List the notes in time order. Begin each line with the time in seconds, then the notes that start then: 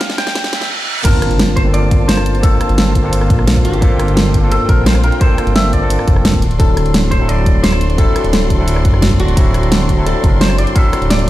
Already playing: A#3 C4 D4 F4 G4 C5 F5 G5 A5, riser
0.01 kick, snare, closed hi-hat
0.10 snare
0.18 G5, snare, closed hi-hat
0.27 snare
0.35 kick, snare, closed hi-hat, reverse cymbal
0.44 snare
0.53 snare, closed hi-hat
0.61 snare
1.03 G1 A#3 C4 D4 F4 A#4 C5 A5, kick, closed hi-hat, crash, impact
1.22 cross-stick, closed hi-hat
1.31 closed hi-hat
1.39 snare, closed hi-hat
1.56 C5, kick, closed hi-hat
1.64 A#3 C4 D4 F4 A4
1.74 D5, closed hi-hat
1.91 kick, closed hi-hat
2.08 C5, snare, closed hi-hat
2.17 cross-stick
2.26 closed hi-hat
2.35 closed hi-hat
2.42 A#3 C4 D4 F4 A4, kick, closed hi-hat
2.61 cross-stick, closed hi-hat
2.69 G1, closed hi-hat
2.78 snare, closed hi-hat
2.95 kick, closed hi-hat
3.02 A#3 C4 D4 F4 A4
3.13 closed hi-hat
3.21 cross-stick
3.30 A#1, kick, closed hi-hat
3.39 cross-stick
3.47 snare, closed hi-hat
3.56 kick
3.65 G1 G4, closed hi-hat
3.74 closed hi-hat
3.80 A#3 C4 D4 F4 A4 G5, kick, closed hi-hat
4.00 cross-stick, closed hi-hat
4.08 G1, closed hi-hat
4.17 snare, closed hi-hat
4.34 kick, closed hi-hat
4.41 A#3 C4 D4 F4 A4
4.52 A4, closed hi-hat
4.69 A#1 A#4, kick, closed hi-hat
4.86 C5, snare, closed hi-hat
4.95 cross-stick
5.04 A#4, closed hi-hat
5.12 closed hi-hat
5.20 A#3 C4 D4 F4 A4 C5, kick, closed hi-hat
5.38 cross-stick, closed hi-hat
5.47 G1, closed hi-hat
5.56 E5, snare, closed hi-hat
5.73 D5, kick, closed hi-hat
5.80 A#3 C4 D4 F4 A4
5.90 closed hi-hat
5.99 cross-stick
6.08 F1, kick, closed hi-hat
6.16 cross-stick
6.25 snare, closed hi-hat
6.34 D1, kick
6.42 F#4 D5 C6, closed hi-hat
6.51 closed hi-hat
6.58 D1 F#3 C4 D4 E4 A4, kick, closed hi-hat
6.77 cross-stick, closed hi-hat
6.86 closed hi-hat
6.94 snare, closed hi-hat
7.11 C5, kick, closed hi-hat
7.19 F#3 C4 D4 E4 A4
7.29 D5, closed hi-hat
7.46 kick, closed hi-hat
7.63 C5, snare, closed hi-hat
7.72 cross-stick
7.81 closed hi-hat
7.90 closed hi-hat
7.97 F#3 C4 D4 E4 A4, kick, closed hi-hat
8.16 cross-stick, closed hi-hat
8.24 D1, closed hi-hat
8.33 snare, closed hi-hat
8.50 kick, closed hi-hat
8.57 F#3 C4 D4 E4 A4
8.68 closed hi-hat
8.76 cross-stick
8.85 F#1, kick, closed hi-hat
8.94 cross-stick
9.02 snare, closed hi-hat
9.11 kick
9.20 D1 F#4, closed hi-hat
9.28 closed hi-hat
9.36 F#3 C4 D4 E4 A4, kick, closed hi-hat
9.54 cross-stick, closed hi-hat
9.63 D1, closed hi-hat
9.72 snare, closed hi-hat
9.89 kick, closed hi-hat
9.96 F#3 C4 D4 E4 A4
10.07 A4, closed hi-hat
10.24 F#1 A#4, kick, closed hi-hat
10.41 C5, snare, closed hi-hat
10.50 cross-stick
10.58 D5, closed hi-hat
10.67 closed hi-hat
10.74 F#3 C4 D4 E4 A4 E5, kick, closed hi-hat
10.93 cross-stick, closed hi-hat
11.02 D1, closed hi-hat
11.10 D5, snare, closed hi-hat
11.19 closed hi-hat